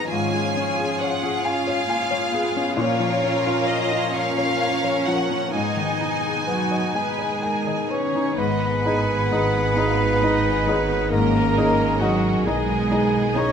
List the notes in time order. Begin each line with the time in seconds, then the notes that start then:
Already playing: G#2 D#3 B3 D#4 G#4 B4 D#5 G#5 A#5
0.09 G#2 F3 C#4 F4 G#4 C#5 G#5
0.34 G#3
0.55 C#4
0.78 G#4
0.99 C#5 F#5
1.22 G#4
1.43 C#4 F4 G#4 C#5 F5 G#5
1.67 G#4 C#5
1.87 A#3 C#4 G#5
2.11 G#3 C#5
2.31 B3 C#4 G#4
2.55 G#3 C#4
2.75 A#2 F3 C#4 F4 A#4 C#5 F5
2.99 F3
3.22 C#4
3.47 F4
3.67 C#5 D#5
3.92 F4
4.13 C#4 A#4 C#5 F5
4.38 C#5
4.60 C#4 F5
4.83 F3 C#5
5.06 F3 C#4 F#5
5.29 F3 C#4
5.53 G#2 B3 D#4 G#4 D#5 G#5
5.77 D#3
6.01 B2 D#4
6.24 G#4
6.47 F#3 F#4 B4 D#5 F#5
6.70 G#4 D#5
6.93 G#3 G#4 B4 D#5 G#5
7.18 G#4 D#5
7.41 D#4 A#4 G#5
7.66 D#3 D#5
7.89 C#4 G#4 B4 C#5 C#6
8.14 D#3 D#4
8.37 G#1 G#2 D#3 B3 G#4 B4 D#5 B5
8.61 G#3
8.84 D#4 G#4 D#5 G#5
9.07 D#5
9.30 D#4 G#4 D#5 F#5
9.53 G#5
9.74 D#4 G#4 D#5 F5 D#6
9.97 G#4
10.20 D#4 G#4 D#5
10.42 G#4
10.65 G#3 D#4 G#4 C#5 D#5
10.88 D#3
11.10 G#2 A#3 C#4 A#4 D#5 A#5
11.33 G#3
11.58 D#4 G#4 D#5
11.78 D#5
12.00 F#3 D#4 F#4 G#4 D#5 F#5
12.23 G#5
12.45 B1 G#3 B3 D#4 G#4 D#5 G#5 D#6
12.68 G#4
12.91 D#4 G#4 D#5
13.36 G#3 C#4 D#4 G#4 C#5 D#5 C#6